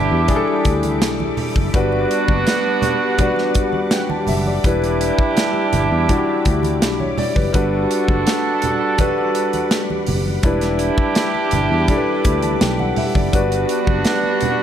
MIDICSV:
0, 0, Header, 1, 7, 480
1, 0, Start_track
1, 0, Key_signature, 1, "minor"
1, 0, Tempo, 724638
1, 1151, Time_signature, 4, 2, 24, 8
1, 9690, End_track
2, 0, Start_track
2, 0, Title_t, "String machine"
2, 0, Program_c, 0, 50
2, 0, Note_on_c, 0, 55, 78
2, 0, Note_on_c, 0, 76, 75
2, 0, Note_on_c, 0, 83, 71
2, 0, Note_on_c, 0, 86, 92
2, 1130, Note_off_c, 0, 76, 0
2, 1153, Note_on_c, 0, 78, 76
2, 3054, Note_off_c, 0, 78, 0
2, 3079, Note_on_c, 0, 76, 81
2, 4964, Note_off_c, 0, 83, 0
2, 4978, Note_off_c, 0, 76, 0
2, 4998, Note_on_c, 0, 78, 76
2, 5002, Note_on_c, 0, 83, 76
2, 6891, Note_off_c, 0, 86, 0
2, 6895, Note_off_c, 0, 55, 0
2, 6897, Note_off_c, 0, 78, 0
2, 6899, Note_off_c, 0, 83, 0
2, 6915, Note_on_c, 0, 86, 88
2, 6916, Note_on_c, 0, 55, 86
2, 6916, Note_on_c, 0, 76, 81
2, 6917, Note_on_c, 0, 83, 75
2, 8815, Note_off_c, 0, 76, 0
2, 8816, Note_off_c, 0, 83, 0
2, 8821, Note_on_c, 0, 78, 71
2, 8826, Note_on_c, 0, 83, 78
2, 9690, Note_off_c, 0, 55, 0
2, 9690, Note_off_c, 0, 78, 0
2, 9690, Note_off_c, 0, 83, 0
2, 9690, Note_off_c, 0, 86, 0
2, 9690, End_track
3, 0, Start_track
3, 0, Title_t, "Grand piano"
3, 0, Program_c, 1, 0
3, 0, Control_c, 1, 64, 127
3, 0, Note_on_c, 1, 55, 84
3, 0, Note_on_c, 1, 62, 74
3, 0, Note_on_c, 1, 64, 75
3, 0, Note_on_c, 1, 71, 88
3, 71, Note_off_c, 1, 71, 0
3, 182, Note_off_c, 1, 55, 0
3, 182, Note_on_c, 1, 55, 82
3, 185, Note_off_c, 1, 62, 0
3, 185, Note_on_c, 1, 62, 79
3, 191, Note_off_c, 1, 64, 0
3, 191, Note_on_c, 1, 64, 76
3, 196, Note_on_c, 1, 68, 75
3, 237, Note_off_c, 1, 68, 0
3, 239, Note_on_c, 1, 69, 95
3, 1002, Note_off_c, 1, 55, 0
3, 1003, Note_off_c, 1, 62, 0
3, 1006, Note_off_c, 1, 64, 0
3, 1030, Note_off_c, 1, 69, 0
3, 1148, Note_on_c, 1, 55, 84
3, 1152, Note_on_c, 1, 62, 74
3, 1156, Note_on_c, 1, 66, 76
3, 1161, Control_c, 1, 64, 0
3, 1163, Note_on_c, 1, 71, 89
3, 1268, Control_c, 1, 64, 127
3, 1965, Note_off_c, 1, 55, 0
3, 1967, Note_off_c, 1, 62, 0
3, 1969, Note_off_c, 1, 66, 0
3, 1973, Note_off_c, 1, 71, 0
3, 2111, Note_on_c, 1, 55, 76
3, 2119, Note_on_c, 1, 62, 74
3, 2123, Note_on_c, 1, 66, 79
3, 2126, Note_on_c, 1, 71, 87
3, 2600, Note_on_c, 1, 78, 57
3, 2600, Note_on_c, 1, 79, 61
3, 2708, Note_off_c, 1, 79, 0
3, 2716, Note_on_c, 1, 81, 57
3, 2824, Note_off_c, 1, 78, 0
3, 2837, Note_on_c, 1, 76, 65
3, 2927, Note_off_c, 1, 55, 0
3, 2931, Note_off_c, 1, 62, 0
3, 2933, Note_off_c, 1, 66, 0
3, 2935, Note_off_c, 1, 71, 0
3, 2949, Note_off_c, 1, 76, 0
3, 2964, Note_on_c, 1, 74, 60
3, 3049, Note_off_c, 1, 81, 0
3, 3075, Note_on_c, 1, 55, 76
3, 3079, Control_c, 1, 64, 0
3, 3082, Note_on_c, 1, 62, 72
3, 3083, Note_on_c, 1, 64, 71
3, 3091, Note_on_c, 1, 71, 88
3, 3187, Note_off_c, 1, 74, 0
3, 3203, Control_c, 1, 64, 127
3, 3889, Note_off_c, 1, 55, 0
3, 3893, Note_off_c, 1, 62, 0
3, 3894, Note_off_c, 1, 64, 0
3, 3897, Note_off_c, 1, 71, 0
3, 4033, Note_on_c, 1, 55, 81
3, 4038, Note_on_c, 1, 62, 71
3, 4043, Note_on_c, 1, 64, 69
3, 4045, Note_on_c, 1, 66, 73
3, 4082, Note_off_c, 1, 66, 0
3, 4091, Note_on_c, 1, 67, 87
3, 4636, Note_on_c, 1, 73, 65
3, 4749, Note_off_c, 1, 73, 0
3, 4760, Note_on_c, 1, 74, 74
3, 4849, Note_off_c, 1, 55, 0
3, 4851, Note_off_c, 1, 62, 0
3, 4853, Note_off_c, 1, 64, 0
3, 4871, Note_off_c, 1, 74, 0
3, 4875, Note_on_c, 1, 71, 67
3, 4878, Note_off_c, 1, 67, 0
3, 4985, Note_on_c, 1, 55, 86
3, 4989, Note_off_c, 1, 71, 0
3, 4991, Note_on_c, 1, 62, 79
3, 4997, Note_on_c, 1, 66, 69
3, 4999, Note_on_c, 1, 71, 91
3, 5003, Control_c, 1, 64, 0
3, 5099, Control_c, 1, 64, 127
3, 5805, Note_off_c, 1, 55, 0
3, 5808, Note_off_c, 1, 62, 0
3, 5811, Note_off_c, 1, 66, 0
3, 5812, Note_off_c, 1, 71, 0
3, 5952, Note_on_c, 1, 55, 84
3, 5954, Note_on_c, 1, 62, 72
3, 5960, Note_on_c, 1, 66, 77
3, 5965, Note_on_c, 1, 71, 95
3, 6768, Note_off_c, 1, 55, 0
3, 6769, Note_off_c, 1, 62, 0
3, 6772, Note_off_c, 1, 66, 0
3, 6775, Note_off_c, 1, 71, 0
3, 6909, Note_on_c, 1, 55, 87
3, 6915, Note_on_c, 1, 62, 79
3, 6921, Note_on_c, 1, 64, 78
3, 6923, Control_c, 1, 64, 0
3, 6926, Note_on_c, 1, 71, 86
3, 7044, Control_c, 1, 64, 127
3, 7726, Note_off_c, 1, 55, 0
3, 7730, Note_off_c, 1, 62, 0
3, 7733, Note_off_c, 1, 64, 0
3, 7735, Note_off_c, 1, 71, 0
3, 7870, Note_on_c, 1, 55, 89
3, 7878, Note_on_c, 1, 62, 76
3, 7881, Note_on_c, 1, 64, 74
3, 7886, Note_on_c, 1, 69, 68
3, 7923, Note_off_c, 1, 69, 0
3, 7929, Note_on_c, 1, 71, 90
3, 8119, Note_on_c, 1, 83, 56
3, 8231, Note_off_c, 1, 83, 0
3, 8233, Note_on_c, 1, 81, 65
3, 8347, Note_off_c, 1, 81, 0
3, 8355, Note_on_c, 1, 79, 69
3, 8468, Note_off_c, 1, 79, 0
3, 8476, Note_on_c, 1, 78, 69
3, 8589, Note_off_c, 1, 78, 0
3, 8595, Note_on_c, 1, 76, 67
3, 8686, Note_off_c, 1, 55, 0
3, 8690, Note_off_c, 1, 62, 0
3, 8692, Note_off_c, 1, 64, 0
3, 8708, Note_off_c, 1, 76, 0
3, 8714, Note_on_c, 1, 74, 58
3, 8716, Note_off_c, 1, 71, 0
3, 8827, Note_on_c, 1, 55, 81
3, 8830, Note_on_c, 1, 62, 73
3, 8837, Note_on_c, 1, 66, 75
3, 8841, Note_on_c, 1, 71, 92
3, 8843, Control_c, 1, 64, 0
3, 8942, Note_off_c, 1, 74, 0
3, 8951, Control_c, 1, 64, 127
3, 9644, Note_off_c, 1, 55, 0
3, 9645, Note_off_c, 1, 62, 0
3, 9649, Note_off_c, 1, 66, 0
3, 9651, Note_off_c, 1, 71, 0
3, 9690, End_track
4, 0, Start_track
4, 0, Title_t, "Horn section"
4, 0, Program_c, 2, 61
4, 0, Note_on_c, 2, 62, 82
4, 0, Note_on_c, 2, 64, 78
4, 0, Note_on_c, 2, 67, 92
4, 885, Note_off_c, 2, 64, 0
4, 886, Note_off_c, 2, 67, 0
4, 887, Note_off_c, 2, 62, 0
4, 1153, Note_on_c, 2, 62, 79
4, 1155, Note_on_c, 2, 59, 80
4, 1155, Note_on_c, 2, 66, 96
4, 2807, Note_off_c, 2, 62, 0
4, 2807, Note_off_c, 2, 66, 0
4, 2808, Note_off_c, 2, 59, 0
4, 3075, Note_on_c, 2, 67, 83
4, 3077, Note_on_c, 2, 62, 78
4, 3077, Note_on_c, 2, 64, 83
4, 4728, Note_off_c, 2, 67, 0
4, 4729, Note_off_c, 2, 62, 0
4, 4730, Note_off_c, 2, 64, 0
4, 4990, Note_on_c, 2, 66, 78
4, 4990, Note_on_c, 2, 69, 93
4, 4992, Note_on_c, 2, 62, 78
4, 6646, Note_off_c, 2, 66, 0
4, 6646, Note_off_c, 2, 69, 0
4, 6647, Note_off_c, 2, 62, 0
4, 6912, Note_on_c, 2, 67, 96
4, 6913, Note_on_c, 2, 62, 89
4, 6914, Note_on_c, 2, 64, 83
4, 8566, Note_off_c, 2, 67, 0
4, 8567, Note_off_c, 2, 62, 0
4, 8567, Note_off_c, 2, 64, 0
4, 8831, Note_on_c, 2, 59, 80
4, 8832, Note_on_c, 2, 62, 83
4, 8832, Note_on_c, 2, 66, 89
4, 9690, Note_off_c, 2, 59, 0
4, 9690, Note_off_c, 2, 62, 0
4, 9690, Note_off_c, 2, 66, 0
4, 9690, End_track
5, 0, Start_track
5, 0, Title_t, "Fingered electric bass"
5, 0, Program_c, 3, 33
5, 76, Note_on_c, 3, 40, 100
5, 175, Note_off_c, 3, 40, 0
5, 435, Note_on_c, 3, 38, 83
5, 676, Note_off_c, 3, 38, 0
5, 676, Note_on_c, 3, 35, 95
5, 876, Note_off_c, 3, 35, 0
5, 1036, Note_on_c, 3, 30, 76
5, 1135, Note_off_c, 3, 30, 0
5, 1154, Note_on_c, 3, 31, 98
5, 1355, Note_off_c, 3, 31, 0
5, 1516, Note_on_c, 3, 30, 95
5, 1615, Note_off_c, 3, 30, 0
5, 2838, Note_on_c, 3, 30, 80
5, 3038, Note_off_c, 3, 30, 0
5, 3076, Note_on_c, 3, 28, 89
5, 3378, Note_off_c, 3, 28, 0
5, 3800, Note_on_c, 3, 31, 95
5, 3898, Note_off_c, 3, 31, 0
5, 3917, Note_on_c, 3, 40, 100
5, 4017, Note_off_c, 3, 40, 0
5, 4281, Note_on_c, 3, 38, 85
5, 4518, Note_off_c, 3, 38, 0
5, 4518, Note_on_c, 3, 35, 94
5, 4718, Note_off_c, 3, 35, 0
5, 4879, Note_on_c, 3, 30, 76
5, 4978, Note_off_c, 3, 30, 0
5, 4999, Note_on_c, 3, 31, 110
5, 5199, Note_off_c, 3, 31, 0
5, 5357, Note_on_c, 3, 30, 91
5, 5457, Note_off_c, 3, 30, 0
5, 6680, Note_on_c, 3, 30, 84
5, 6880, Note_off_c, 3, 30, 0
5, 6914, Note_on_c, 3, 28, 99
5, 7218, Note_off_c, 3, 28, 0
5, 7636, Note_on_c, 3, 31, 94
5, 7736, Note_off_c, 3, 31, 0
5, 7755, Note_on_c, 3, 40, 103
5, 7855, Note_off_c, 3, 40, 0
5, 8115, Note_on_c, 3, 38, 75
5, 8317, Note_off_c, 3, 38, 0
5, 8358, Note_on_c, 3, 35, 92
5, 8558, Note_off_c, 3, 35, 0
5, 8714, Note_on_c, 3, 30, 86
5, 8815, Note_off_c, 3, 30, 0
5, 8833, Note_on_c, 3, 31, 98
5, 9035, Note_off_c, 3, 31, 0
5, 9192, Note_on_c, 3, 30, 84
5, 9293, Note_off_c, 3, 30, 0
5, 9690, End_track
6, 0, Start_track
6, 0, Title_t, "Muted fingered electric bass strokes"
6, 3438, Note_on_c, 9, 29, 48
6, 3504, Note_off_c, 9, 29, 0
6, 7273, Note_on_c, 9, 29, 51
6, 7339, Note_off_c, 9, 29, 0
6, 9690, End_track
7, 0, Start_track
7, 0, Title_t, "Drums"
7, 187, Note_on_c, 9, 42, 70
7, 189, Note_on_c, 9, 36, 80
7, 197, Note_on_c, 9, 62, 32
7, 197, Note_on_c, 9, 63, 70
7, 197, Note_on_c, 9, 64, 72
7, 253, Note_off_c, 9, 42, 0
7, 255, Note_off_c, 9, 36, 0
7, 263, Note_off_c, 9, 62, 0
7, 263, Note_off_c, 9, 63, 0
7, 263, Note_off_c, 9, 64, 0
7, 315, Note_on_c, 9, 62, 27
7, 381, Note_off_c, 9, 62, 0
7, 429, Note_on_c, 9, 42, 64
7, 432, Note_on_c, 9, 36, 89
7, 495, Note_off_c, 9, 42, 0
7, 498, Note_off_c, 9, 36, 0
7, 550, Note_on_c, 9, 42, 57
7, 553, Note_on_c, 9, 63, 69
7, 616, Note_off_c, 9, 42, 0
7, 619, Note_off_c, 9, 63, 0
7, 673, Note_on_c, 9, 38, 109
7, 673, Note_on_c, 9, 42, 96
7, 739, Note_off_c, 9, 42, 0
7, 740, Note_off_c, 9, 38, 0
7, 795, Note_on_c, 9, 62, 31
7, 795, Note_on_c, 9, 63, 69
7, 861, Note_off_c, 9, 62, 0
7, 861, Note_off_c, 9, 63, 0
7, 908, Note_on_c, 9, 64, 80
7, 911, Note_on_c, 9, 46, 76
7, 974, Note_off_c, 9, 64, 0
7, 978, Note_off_c, 9, 46, 0
7, 1032, Note_on_c, 9, 36, 87
7, 1035, Note_on_c, 9, 63, 61
7, 1098, Note_off_c, 9, 36, 0
7, 1102, Note_off_c, 9, 63, 0
7, 1152, Note_on_c, 9, 36, 106
7, 1155, Note_on_c, 9, 42, 86
7, 1218, Note_off_c, 9, 36, 0
7, 1222, Note_off_c, 9, 42, 0
7, 1275, Note_on_c, 9, 62, 36
7, 1341, Note_off_c, 9, 62, 0
7, 1397, Note_on_c, 9, 42, 81
7, 1463, Note_off_c, 9, 42, 0
7, 1513, Note_on_c, 9, 36, 86
7, 1579, Note_off_c, 9, 36, 0
7, 1630, Note_on_c, 9, 62, 27
7, 1633, Note_on_c, 9, 42, 87
7, 1640, Note_on_c, 9, 38, 104
7, 1697, Note_off_c, 9, 62, 0
7, 1700, Note_off_c, 9, 42, 0
7, 1706, Note_off_c, 9, 38, 0
7, 1868, Note_on_c, 9, 64, 84
7, 1873, Note_on_c, 9, 42, 80
7, 1935, Note_off_c, 9, 64, 0
7, 1939, Note_off_c, 9, 42, 0
7, 2109, Note_on_c, 9, 42, 70
7, 2109, Note_on_c, 9, 62, 34
7, 2109, Note_on_c, 9, 63, 72
7, 2109, Note_on_c, 9, 64, 71
7, 2111, Note_on_c, 9, 36, 88
7, 2175, Note_off_c, 9, 62, 0
7, 2175, Note_off_c, 9, 63, 0
7, 2175, Note_off_c, 9, 64, 0
7, 2176, Note_off_c, 9, 42, 0
7, 2177, Note_off_c, 9, 36, 0
7, 2228, Note_on_c, 9, 62, 28
7, 2240, Note_on_c, 9, 38, 30
7, 2294, Note_off_c, 9, 62, 0
7, 2306, Note_off_c, 9, 38, 0
7, 2349, Note_on_c, 9, 42, 69
7, 2354, Note_on_c, 9, 36, 90
7, 2415, Note_off_c, 9, 42, 0
7, 2420, Note_off_c, 9, 36, 0
7, 2469, Note_on_c, 9, 63, 72
7, 2535, Note_off_c, 9, 63, 0
7, 2589, Note_on_c, 9, 42, 93
7, 2590, Note_on_c, 9, 38, 111
7, 2655, Note_off_c, 9, 42, 0
7, 2656, Note_off_c, 9, 38, 0
7, 2712, Note_on_c, 9, 62, 30
7, 2712, Note_on_c, 9, 63, 66
7, 2779, Note_off_c, 9, 62, 0
7, 2779, Note_off_c, 9, 63, 0
7, 2827, Note_on_c, 9, 64, 70
7, 2831, Note_on_c, 9, 46, 67
7, 2893, Note_off_c, 9, 64, 0
7, 2897, Note_off_c, 9, 46, 0
7, 2950, Note_on_c, 9, 63, 62
7, 3016, Note_off_c, 9, 63, 0
7, 3075, Note_on_c, 9, 36, 107
7, 3079, Note_on_c, 9, 42, 91
7, 3141, Note_off_c, 9, 36, 0
7, 3145, Note_off_c, 9, 42, 0
7, 3192, Note_on_c, 9, 62, 32
7, 3204, Note_on_c, 9, 42, 51
7, 3259, Note_off_c, 9, 62, 0
7, 3270, Note_off_c, 9, 42, 0
7, 3318, Note_on_c, 9, 42, 78
7, 3384, Note_off_c, 9, 42, 0
7, 3435, Note_on_c, 9, 36, 91
7, 3501, Note_off_c, 9, 36, 0
7, 3551, Note_on_c, 9, 62, 28
7, 3555, Note_on_c, 9, 42, 85
7, 3561, Note_on_c, 9, 38, 108
7, 3618, Note_off_c, 9, 62, 0
7, 3621, Note_off_c, 9, 42, 0
7, 3627, Note_off_c, 9, 38, 0
7, 3668, Note_on_c, 9, 62, 32
7, 3734, Note_off_c, 9, 62, 0
7, 3794, Note_on_c, 9, 42, 78
7, 3795, Note_on_c, 9, 64, 78
7, 3860, Note_off_c, 9, 42, 0
7, 3861, Note_off_c, 9, 64, 0
7, 4033, Note_on_c, 9, 63, 75
7, 4033, Note_on_c, 9, 64, 71
7, 4036, Note_on_c, 9, 36, 90
7, 4036, Note_on_c, 9, 42, 72
7, 4099, Note_off_c, 9, 63, 0
7, 4099, Note_off_c, 9, 64, 0
7, 4102, Note_off_c, 9, 36, 0
7, 4103, Note_off_c, 9, 42, 0
7, 4274, Note_on_c, 9, 42, 69
7, 4277, Note_on_c, 9, 36, 93
7, 4341, Note_off_c, 9, 42, 0
7, 4343, Note_off_c, 9, 36, 0
7, 4392, Note_on_c, 9, 63, 72
7, 4401, Note_on_c, 9, 42, 54
7, 4458, Note_off_c, 9, 63, 0
7, 4467, Note_off_c, 9, 42, 0
7, 4517, Note_on_c, 9, 62, 36
7, 4518, Note_on_c, 9, 38, 111
7, 4518, Note_on_c, 9, 42, 102
7, 4583, Note_off_c, 9, 62, 0
7, 4584, Note_off_c, 9, 38, 0
7, 4584, Note_off_c, 9, 42, 0
7, 4638, Note_on_c, 9, 63, 70
7, 4705, Note_off_c, 9, 63, 0
7, 4753, Note_on_c, 9, 64, 80
7, 4756, Note_on_c, 9, 46, 74
7, 4819, Note_off_c, 9, 64, 0
7, 4823, Note_off_c, 9, 46, 0
7, 4876, Note_on_c, 9, 36, 82
7, 4877, Note_on_c, 9, 63, 67
7, 4942, Note_off_c, 9, 36, 0
7, 4943, Note_off_c, 9, 63, 0
7, 4995, Note_on_c, 9, 42, 92
7, 4996, Note_on_c, 9, 36, 98
7, 5062, Note_off_c, 9, 36, 0
7, 5062, Note_off_c, 9, 42, 0
7, 5238, Note_on_c, 9, 42, 83
7, 5304, Note_off_c, 9, 42, 0
7, 5355, Note_on_c, 9, 36, 89
7, 5421, Note_off_c, 9, 36, 0
7, 5475, Note_on_c, 9, 42, 90
7, 5479, Note_on_c, 9, 62, 32
7, 5482, Note_on_c, 9, 38, 107
7, 5542, Note_off_c, 9, 42, 0
7, 5545, Note_off_c, 9, 62, 0
7, 5548, Note_off_c, 9, 38, 0
7, 5709, Note_on_c, 9, 42, 80
7, 5720, Note_on_c, 9, 64, 79
7, 5775, Note_off_c, 9, 42, 0
7, 5786, Note_off_c, 9, 64, 0
7, 5950, Note_on_c, 9, 42, 70
7, 5953, Note_on_c, 9, 36, 92
7, 5958, Note_on_c, 9, 62, 32
7, 5958, Note_on_c, 9, 63, 77
7, 5958, Note_on_c, 9, 64, 74
7, 6016, Note_off_c, 9, 42, 0
7, 6019, Note_off_c, 9, 36, 0
7, 6024, Note_off_c, 9, 62, 0
7, 6024, Note_off_c, 9, 63, 0
7, 6024, Note_off_c, 9, 64, 0
7, 6080, Note_on_c, 9, 62, 25
7, 6146, Note_off_c, 9, 62, 0
7, 6193, Note_on_c, 9, 42, 74
7, 6259, Note_off_c, 9, 42, 0
7, 6314, Note_on_c, 9, 42, 51
7, 6317, Note_on_c, 9, 63, 70
7, 6380, Note_off_c, 9, 42, 0
7, 6384, Note_off_c, 9, 63, 0
7, 6432, Note_on_c, 9, 38, 104
7, 6432, Note_on_c, 9, 42, 91
7, 6498, Note_off_c, 9, 38, 0
7, 6498, Note_off_c, 9, 42, 0
7, 6559, Note_on_c, 9, 63, 68
7, 6625, Note_off_c, 9, 63, 0
7, 6667, Note_on_c, 9, 46, 69
7, 6677, Note_on_c, 9, 64, 73
7, 6733, Note_off_c, 9, 46, 0
7, 6743, Note_off_c, 9, 64, 0
7, 6800, Note_on_c, 9, 63, 63
7, 6866, Note_off_c, 9, 63, 0
7, 6909, Note_on_c, 9, 42, 94
7, 6912, Note_on_c, 9, 36, 115
7, 6976, Note_off_c, 9, 42, 0
7, 6978, Note_off_c, 9, 36, 0
7, 7031, Note_on_c, 9, 42, 60
7, 7032, Note_on_c, 9, 38, 39
7, 7038, Note_on_c, 9, 62, 33
7, 7097, Note_off_c, 9, 42, 0
7, 7098, Note_off_c, 9, 38, 0
7, 7104, Note_off_c, 9, 62, 0
7, 7147, Note_on_c, 9, 42, 77
7, 7213, Note_off_c, 9, 42, 0
7, 7271, Note_on_c, 9, 36, 94
7, 7338, Note_off_c, 9, 36, 0
7, 7388, Note_on_c, 9, 42, 87
7, 7394, Note_on_c, 9, 38, 110
7, 7398, Note_on_c, 9, 62, 29
7, 7454, Note_off_c, 9, 42, 0
7, 7460, Note_off_c, 9, 38, 0
7, 7464, Note_off_c, 9, 62, 0
7, 7516, Note_on_c, 9, 62, 30
7, 7582, Note_off_c, 9, 62, 0
7, 7625, Note_on_c, 9, 42, 85
7, 7639, Note_on_c, 9, 64, 74
7, 7691, Note_off_c, 9, 42, 0
7, 7705, Note_off_c, 9, 64, 0
7, 7871, Note_on_c, 9, 36, 86
7, 7871, Note_on_c, 9, 42, 69
7, 7872, Note_on_c, 9, 62, 34
7, 7872, Note_on_c, 9, 63, 75
7, 7872, Note_on_c, 9, 64, 78
7, 7937, Note_off_c, 9, 42, 0
7, 7938, Note_off_c, 9, 36, 0
7, 7939, Note_off_c, 9, 62, 0
7, 7939, Note_off_c, 9, 63, 0
7, 7939, Note_off_c, 9, 64, 0
7, 8111, Note_on_c, 9, 42, 68
7, 8114, Note_on_c, 9, 36, 90
7, 8178, Note_off_c, 9, 42, 0
7, 8180, Note_off_c, 9, 36, 0
7, 8230, Note_on_c, 9, 42, 52
7, 8232, Note_on_c, 9, 63, 69
7, 8297, Note_off_c, 9, 42, 0
7, 8299, Note_off_c, 9, 63, 0
7, 8353, Note_on_c, 9, 38, 113
7, 8353, Note_on_c, 9, 42, 90
7, 8354, Note_on_c, 9, 62, 35
7, 8419, Note_off_c, 9, 42, 0
7, 8420, Note_off_c, 9, 38, 0
7, 8420, Note_off_c, 9, 62, 0
7, 8474, Note_on_c, 9, 62, 31
7, 8474, Note_on_c, 9, 63, 69
7, 8541, Note_off_c, 9, 62, 0
7, 8541, Note_off_c, 9, 63, 0
7, 8587, Note_on_c, 9, 46, 76
7, 8592, Note_on_c, 9, 64, 82
7, 8653, Note_off_c, 9, 46, 0
7, 8658, Note_off_c, 9, 64, 0
7, 8712, Note_on_c, 9, 36, 78
7, 8712, Note_on_c, 9, 63, 69
7, 8778, Note_off_c, 9, 36, 0
7, 8779, Note_off_c, 9, 63, 0
7, 8832, Note_on_c, 9, 36, 99
7, 8832, Note_on_c, 9, 42, 101
7, 8833, Note_on_c, 9, 62, 29
7, 8898, Note_off_c, 9, 36, 0
7, 8898, Note_off_c, 9, 42, 0
7, 8900, Note_off_c, 9, 62, 0
7, 8954, Note_on_c, 9, 42, 56
7, 9020, Note_off_c, 9, 42, 0
7, 9068, Note_on_c, 9, 42, 78
7, 9134, Note_off_c, 9, 42, 0
7, 9189, Note_on_c, 9, 36, 92
7, 9255, Note_off_c, 9, 36, 0
7, 9304, Note_on_c, 9, 42, 82
7, 9310, Note_on_c, 9, 38, 113
7, 9370, Note_off_c, 9, 42, 0
7, 9376, Note_off_c, 9, 38, 0
7, 9430, Note_on_c, 9, 62, 31
7, 9496, Note_off_c, 9, 62, 0
7, 9542, Note_on_c, 9, 42, 76
7, 9555, Note_on_c, 9, 64, 81
7, 9609, Note_off_c, 9, 42, 0
7, 9621, Note_off_c, 9, 64, 0
7, 9690, End_track
0, 0, End_of_file